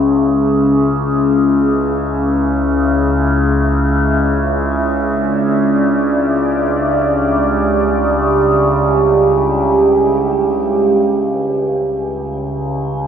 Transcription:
Already playing: synth drone C#2 C#3, ambient pad C#4 G#4 E5
3.85 ambient pad D5
5.75 ambient pad G4
11.36 synth drone C#2 C#3, ambient pad C#4
12.34 ambient pad G#4

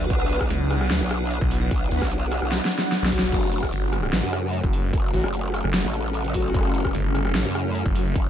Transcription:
Already playing: supersaw synth F#3 B3 D4, ambient pad D4 B4 F#5
0.10 wobble bass B1, supersaw synth E4, kick, closed hi-hat
0.30 brass ensemble B3 F#4 B4, closed hi-hat
0.41 kick, cross-stick
0.50 detuned saw bass C#2, closed hi-hat
0.71 cross-stick, closed hi-hat
0.81 cross-stick
0.91 detuned saw bass D2, snare, closed hi-hat
1.01 wobble bass B1
1.11 cross-stick, closed hi-hat
1.31 closed hi-hat
1.41 detuned saw bass B1, kick, closed hi-hat
1.51 brass ensemble B3 F#4 B4, open hi-hat
1.71 wobble bass B1, kick, closed hi-hat
1.91 detuned saw bass D2, brass ensemble B3 F#4 B4, closed hi-hat
2.02 wobble bass B1, kick, cross-stick, snare, closed hi-hat
2.11 closed hi-hat
2.32 cross-stick, closed hi-hat
2.42 wobble bass B1, cross-stick
2.52 snare, closed hi-hat
2.65 snare
2.72 closed hi-hat
2.79 snare
2.92 snare, closed hi-hat
3.02 detuned saw bass B1, snare, closed hi-hat
3.12 brass ensemble F#3 C#4 F#4, kick, open hi-hat
3.19 snare
3.32 wobble bass F#1, supersaw synth C#3 F#3 A3 F#4, ambient pad C#4, kick, closed hi-hat, crash
3.52 brass ensemble F#3 C#4 F#4, closed hi-hat
3.63 kick, cross-stick
3.73 detuned saw bass G1, closed hi-hat
3.80 ambient pad A4
3.93 cross-stick, closed hi-hat
4.03 cross-stick
4.13 detuned saw bass A1, snare, closed hi-hat
4.23 wobble bass F#2
4.33 cross-stick, closed hi-hat
4.53 closed hi-hat
4.64 detuned saw bass F#1, kick, closed hi-hat
4.73 brass ensemble F#3 C#4 F#4, open hi-hat
4.93 wobble bass F#1, kick, closed hi-hat
5.13 detuned saw bass A1, brass ensemble F#3 C#4 F#4, closed hi-hat
5.24 wobble bass F#1, cross-stick
5.34 closed hi-hat
5.54 cross-stick, closed hi-hat
5.64 detuned saw bass F#1, cross-stick
5.74 snare, closed hi-hat
5.84 wobble bass A1
5.94 closed hi-hat
6.14 closed hi-hat
6.25 closed hi-hat
6.34 brass ensemble F#3 C#4 F#4, kick, open hi-hat
6.54 wobble bass F#1, supersaw synth E4, kick, closed hi-hat
6.75 brass ensemble F#3 C#4 F#4, closed hi-hat
6.85 kick, cross-stick
6.95 detuned saw bass G1, closed hi-hat
7.15 cross-stick, closed hi-hat
7.25 cross-stick
7.35 detuned saw bass A1, snare, closed hi-hat
7.45 wobble bass F#2
7.55 cross-stick, closed hi-hat
7.75 closed hi-hat
7.86 detuned saw bass F#1, kick, closed hi-hat
7.95 brass ensemble F#3 C#4 F#4, open hi-hat
8.15 wobble bass F#1, kick, closed hi-hat

